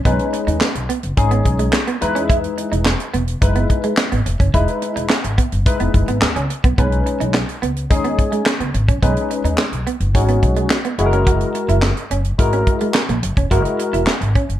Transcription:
0.05 upright bass B1, tine electric piano G#3 C#4 D#4 B4, clean electric guitar B3, kick, closed hi-hat
0.19 closed hi-hat
0.33 muted clean electric guitar stroke, closed hi-hat
0.47 upright bass D#2, clean electric guitar D#4, closed hi-hat
0.61 snare, clap
0.75 upright bass B1, closed hi-hat
0.89 clean electric guitar B3, closed hi-hat
1.03 upright bass F#1, closed hi-hat
1.17 upright bass G#1, tine electric piano G#3 C#4 D#4 G#4, kick, closed hi-hat
1.31 clean electric guitar B3, closed hi-hat
1.45 upright bass B1, muted clean electric guitar stroke, kick, closed hi-hat
1.59 clean electric guitar G#3, closed hi-hat
1.73 snare, clap
1.87 clean electric guitar B3, closed hi-hat
2.01 upright bass E2, tine electric piano G#3 D#4 E4 B4, muted clean electric guitar stroke, closed hi-hat
2.15 clean electric guitar C#4, closed hi-hat
2.29 clean electric guitar E4, kick, closed hi-hat
2.44 closed hi-hat
2.58 muted clean electric guitar stroke, closed hi-hat
2.72 upright bass E1, clean electric guitar D#4, closed hi-hat
2.85 snare, clap
3.00 closed hi-hat
3.14 upright bass E1, clean electric guitar B3, closed hi-hat
3.28 closed hi-hat
3.41 upright bass F#1, tine electric piano G#3 D#4 E4 B4, kick, closed hi-hat
3.55 clean electric guitar B3, closed hi-hat
3.70 muted clean electric guitar stroke, kick, closed hi-hat
3.83 clean electric guitar G#3, closed hi-hat
3.97 snare, clap
4.12 upright bass G#1, clean electric guitar B3, closed hi-hat
4.26 upright bass E1, muted clean electric guitar stroke, closed hi-hat
4.40 upright bass F#1, clean electric guitar C#4, kick, closed hi-hat
4.54 upright bass E1, tine electric piano G#3 D#4 E4 B4, clean electric guitar E4, kick, closed hi-hat
4.68 closed hi-hat
4.82 muted clean electric guitar stroke, closed hi-hat
4.96 upright bass E1, clean electric guitar D#4, closed hi-hat
5.09 snare, clap
5.24 upright bass G#1, closed hi-hat
5.38 clean electric guitar B3, kick, closed hi-hat
5.52 upright bass F#1, closed hi-hat
5.66 tine electric piano G#3 D#4 E4 B4, kick, closed hi-hat
5.80 upright bass E1, clean electric guitar B3, closed hi-hat
5.94 upright bass F#1, muted clean electric guitar stroke, kick, closed hi-hat
6.08 upright bass G#1, clean electric guitar B3, closed hi-hat
6.22 upright bass D#2, snare, clap
6.36 upright bass C#2, clean electric guitar C#4, closed hi-hat
6.50 muted clean electric guitar stroke, closed hi-hat
6.64 upright bass B1, clean electric guitar B3, kick, closed hi-hat
6.78 upright bass B1, tine electric piano G#3 C#4 D#4 B4, clean electric guitar B3, kick, closed hi-hat
6.92 closed hi-hat
7.06 muted clean electric guitar stroke, closed hi-hat
7.20 upright bass B1, clean electric guitar D#4, closed hi-hat
7.34 snare, clap
7.49 closed hi-hat
7.62 upright bass C#2, clean electric guitar B3, closed hi-hat
7.76 closed hi-hat
7.90 upright bass D#2, tine electric piano G#3 C#4 D#4 G#4, kick, closed hi-hat
8.04 clean electric guitar B3, closed hi-hat
8.18 muted clean electric guitar stroke, kick, closed hi-hat
8.32 clean electric guitar G#3, closed hi-hat
8.46 snare, clap
8.60 upright bass C#2, clean electric guitar B3, closed hi-hat
8.74 upright bass G#1, muted clean electric guitar stroke, closed hi-hat
8.88 upright bass A#1, clean electric guitar C#4, kick, closed hi-hat
9.02 upright bass B1, tine electric piano G#3 C#4 D#4 B4, clean electric guitar B3, kick, closed hi-hat
9.17 closed hi-hat
9.31 muted clean electric guitar stroke, closed hi-hat
9.44 upright bass D#2, clean electric guitar D#4, closed hi-hat
9.58 snare, clap
9.72 upright bass B1, closed hi-hat
9.87 clean electric guitar B3, closed hi-hat
10.00 upright bass F#1, closed hi-hat
10.14 upright bass G#1, tine electric piano G#3 C#4 D#4 F#4, kick, closed hi-hat
10.28 clean electric guitar B3, closed hi-hat
10.43 upright bass B1, muted clean electric guitar stroke, kick, closed hi-hat
10.56 clean electric guitar G#3, closed hi-hat
10.70 snare, clap
10.85 clean electric guitar B3, closed hi-hat
10.98 upright bass F#1, tine electric piano G#3 E4 F#4 G#4, muted clean electric guitar stroke, closed hi-hat
11.06 tine electric piano A#4
11.13 clean electric guitar C#4, closed hi-hat
11.27 clean electric guitar F#4, kick, closed hi-hat
11.41 closed hi-hat
11.55 muted clean electric guitar stroke, closed hi-hat
11.68 upright bass F#1, clean electric guitar E4, closed hi-hat
11.82 snare, clap
11.97 closed hi-hat
12.10 upright bass F#1, clean electric guitar C#4, closed hi-hat
12.24 closed hi-hat
12.38 upright bass G#1, tine electric piano G#3 E4 F#4 A#4, kick, closed hi-hat
12.52 clean electric guitar C#4, closed hi-hat
12.67 muted clean electric guitar stroke, kick, closed hi-hat
12.80 clean electric guitar G#3, closed hi-hat
12.94 snare, clap
13.09 upright bass A#1, clean electric guitar A#3, closed hi-hat
13.23 upright bass F#1, muted clean electric guitar stroke, closed hi-hat
13.37 upright bass E1, clean electric guitar C#4, kick, closed hi-hat
13.51 upright bass F#1, tine electric piano G#3 E4 F#4 A#4, clean electric guitar F#4, kick, closed hi-hat
13.65 closed hi-hat
13.79 muted clean electric guitar stroke, closed hi-hat
13.93 upright bass E1, clean electric guitar E4, closed hi-hat
14.07 snare, clap
14.21 upright bass G#1, closed hi-hat
14.35 clean electric guitar C#4, kick, closed hi-hat
14.49 upright bass F#1, closed hi-hat

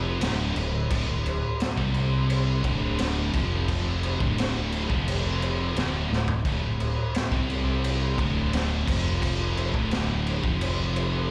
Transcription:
Already playing: fingered electric bass F1, distorted electric guitar F2 C3 F3
0.21 fingered electric bass D1, distorted electric guitar D2 A2 D3, snare, crash
0.56 fingered electric bass D1, distorted electric guitar D2 A2, crash
0.90 fingered electric bass D1, distorted electric guitar D2 A2, kick, crash
1.08 fingered electric bass D1, distorted electric guitar D2 A2
1.26 crash
1.60 snare, crash
1.77 fingered electric bass C2, distorted electric guitar C3 G3 C4, kick
1.94 crash
2.30 crash
2.63 fingered electric bass D1, distorted electric guitar D2 A2 D3, kick, crash
2.98 snare, crash
3.34 fingered electric bass F1, distorted electric guitar F2 C3 F3, kick, crash
3.68 kick, crash
4.03 crash
4.20 fingered electric bass D1, distorted electric guitar D2 A2 D3, kick
4.38 snare, crash
4.72 crash
4.89 fingered electric bass F1, distorted electric guitar F2 C3 F3, kick
5.08 crash
5.42 crash
5.75 fingered electric bass D1, distorted electric guitar D2 A2 D3, snare, crash
6.10 fingered electric bass D1, distorted electric guitar D2 A2, snare
6.28 floor tom
6.45 fingered electric bass D1, distorted electric guitar D2 A2, kick, crash
6.61 fingered electric bass D1, distorted electric guitar D2 A2
6.80 crash
7.14 snare, crash
7.31 fingered electric bass C2, distorted electric guitar C3 G3 C4, kick
7.50 crash
7.84 crash
8.17 fingered electric bass D1, distorted electric guitar D2 A2 D3, kick, crash
8.53 snare, crash
8.87 fingered electric bass F1, distorted electric guitar F2 C3 F3, kick, crash
9.22 kick, crash
9.57 crash
9.72 fingered electric bass D1, distorted electric guitar D2 A2 D3, kick
9.91 snare, crash
10.26 crash
10.42 fingered electric bass F1, distorted electric guitar F2 C3 F3, kick
10.61 crash
10.96 crash

